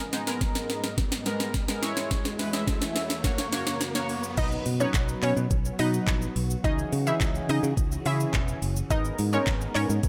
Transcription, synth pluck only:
4.38 4.50 D#4 medium
4.38 4.50 D#5 loud
4.80 5.05 C#4 medium
4.80 5.05 C#5 medium
5.23 5.35 C#4 medium
5.23 5.35 C#5 medium
5.79 5.92 D#4 medium
5.79 5.91 D#5 medium
6.64 6.77 D#4 medium
6.64 6.76 D#5 loud
7.07 7.31 E4 medium
7.07 7.31 E5 medium
7.49 7.62 D#4 medium
7.49 7.61 D#5 medium
8.06 8.46 E4 medium
8.06 8.46 E5 medium
8.91 9.03 D#4 medium
8.91 9.03 D#5 loud
9.33 9.58 C#4 medium
9.33 9.57 C#5 medium
9.75 9.88 C#4 medium
9.75 9.87 C#5 medium

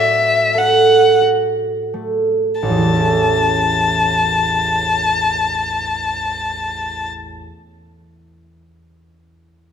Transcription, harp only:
0.00 2.67 A2 soft
0.00 1.92 A3 soft
0.00 1.20 F#4 soft
0.00 0.53 A4 soft
0.55 4.45 A4 soft
1.21 2.67 F#4 soft
1.94 2.83 A3 soft
2.63 7.41 A1 soft
2.69 7.48 E2 soft
2.77 7.56 E3 soft
2.85 7.63 A3 soft
2.93 7.71 C#4 soft
3.00 7.79 E4 soft

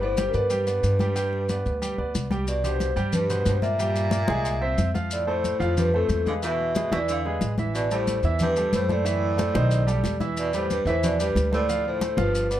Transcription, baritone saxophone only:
0.03 0.26 A2 medium
0.27 0.34 F#2 medium
0.34 2.11 G2 medium
2.47 2.63 B2 medium
2.64 2.95 G2 medium
3.13 3.44 G2 medium
3.47 3.62 G2 medium
3.62 4.90 A#2 medium
5.12 5.27 A2 medium
5.28 5.73 A2 medium
5.77 5.92 G2 medium
5.94 6.24 F2 medium
6.28 6.35 D3 medium
6.44 6.89 B2 medium
6.92 6.99 B2 medium
7.09 7.39 D3 medium
7.75 7.90 B2 medium
7.92 8.22 A2 medium
8.42 8.71 G2 medium
8.75 8.89 A2 medium
8.91 10.18 A2 medium
10.38 10.53 B2 medium
10.55 10.70 A2 medium
10.71 10.86 G2 medium
10.88 10.95 A2 medium
11.03 11.19 B2 medium
11.21 11.51 G2 medium
11.54 11.84 A2 medium
11.88 12.17 A2 medium
12.20 12.60 G2 medium

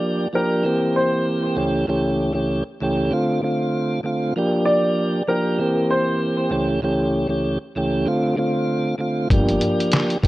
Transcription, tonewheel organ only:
0.00 0.27 F3 medium
0.00 0.28 A#3 medium
0.00 0.28 D4 medium
0.00 0.28 G4 loud
0.33 0.64 F3 medium
0.33 0.63 A#3 medium
0.33 0.65 D4 medium
0.33 0.65 G4 medium
0.64 1.55 E3 medium
0.64 1.57 A#3 medium
0.64 1.58 C4 medium
0.64 1.57 G4 loud
1.55 1.85 C#2 medium
1.55 1.85 E3 medium
1.55 1.86 A3 medium
1.55 1.86 C#4 medium
1.55 1.86 G4 loud
1.87 2.31 C#2 medium
1.87 2.32 E3 medium
1.87 2.32 A3 medium
1.87 2.33 C#4 medium
1.87 2.33 G4 medium
2.33 2.63 C#2 medium
2.33 2.63 E3 medium
2.33 2.63 A3 medium
2.33 2.64 C#4 medium
2.33 2.64 G4 medium
2.81 3.12 C#2 medium
2.81 3.12 E3 medium
2.81 3.10 A3 medium
2.81 3.13 C#4 medium
2.81 3.13 G4 loud
3.11 3.40 D3 medium
3.11 3.40 A3 medium
3.11 3.41 C4 medium
3.11 3.41 F4 loud
3.42 4.00 D3 medium
3.42 4.00 A3 medium
3.42 4.01 C4 medium
3.42 4.01 F4 medium
4.03 4.33 D3 medium
4.03 4.33 A3 medium
4.03 4.33 C4 medium
4.03 4.34 F4 medium
4.36 5.22 F3 medium
4.36 5.22 A#3 medium
4.36 5.23 D4 medium
4.36 5.23 G4 loud
5.28 5.59 F3 medium
5.28 5.58 A#3 medium
5.28 5.60 D4 medium
5.28 5.60 G4 medium
5.59 6.50 E3 medium
5.59 6.52 A#3 medium
5.59 6.53 C4 medium
5.59 6.51 G4 loud
6.50 6.80 C#2 medium
6.50 6.80 E3 medium
6.50 6.80 A3 medium
6.50 6.81 C#4 medium
6.50 6.81 G4 loud
6.82 7.26 C#2 medium
6.82 7.27 E3 medium
6.82 7.27 A3 medium
6.82 7.27 C#4 medium
6.82 7.28 G4 medium
7.28 7.57 C#2 medium
7.28 7.58 E3 medium
7.28 7.58 A3 medium
7.28 7.58 C#4 medium
7.28 7.59 G4 medium
7.75 8.06 C#2 medium
7.75 8.07 E3 medium
7.75 8.05 A3 medium
7.75 8.07 C#4 medium
7.75 8.08 G4 loud
8.06 8.35 D3 medium
8.06 8.35 A3 medium
8.06 8.36 C4 medium
8.06 8.36 F4 loud
8.36 8.94 D3 loud
8.36 8.95 A3 medium
8.36 8.95 C4 medium
8.36 8.96 F4 loud
8.98 9.27 D3 medium
8.98 9.28 A3 medium
8.98 9.28 C4 medium
8.98 9.29 F4 medium
9.31 10.17 F3 medium
9.31 10.17 A#3 medium
9.31 10.18 D4 medium
9.31 10.18 G4 loud
10.22 10.28 F3 medium
10.22 10.28 A#3 medium
10.22 10.28 D4 medium

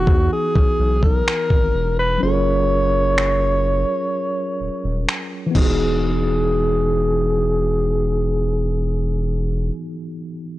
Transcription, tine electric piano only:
0.00 2.16 E3 medium
0.00 2.17 B3 medium
0.00 2.18 D#4 medium
0.00 2.19 F#4 medium
0.00 2.20 G#4 medium
2.18 5.49 F#3 medium
2.18 5.50 C#4 medium
2.22 5.51 F4 medium
2.22 5.53 G#4 medium
2.27 2.31 A4 medium
2.34 5.57 A#4 medium
5.46 9.62 E3 medium
5.51 9.67 B3 medium
5.56 9.71 D#4 medium
5.60 9.76 F#4 medium
5.65 9.81 G#4 medium

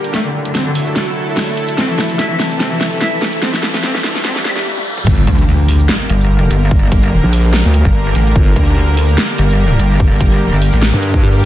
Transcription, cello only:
0.14 0.23 A3 medium
0.25 0.33 D3 medium
0.34 0.44 D3 medium
0.45 0.53 D3 medium
0.55 0.64 C4 medium
0.66 0.74 D3 medium
0.75 0.85 D3 medium
1.78 1.88 C4 medium
1.89 1.97 E3 medium
1.98 2.08 E3 medium
2.10 2.18 E3 medium
2.19 2.29 E4 medium
2.30 2.38 E3 medium
2.40 2.49 E3 medium
2.60 2.70 C4 medium
2.71 2.79 E3 medium
2.81 2.90 E3 medium
2.92 3.00 E3 medium
3.01 3.11 E4 medium
3.13 3.21 E3 medium
3.22 3.32 E3 medium
3.42 3.52 C4 medium
3.54 3.62 E3 medium
3.63 3.73 E3 medium
3.74 3.82 E3 medium
3.84 3.93 C4 loud
3.95 4.03 E3 medium
4.04 4.14 E3 medium
4.15 4.23 E3 medium
4.25 4.34 C4 loud
4.36 4.44 E3 medium
4.45 4.55 C4 loud
4.57 4.64 E3 medium

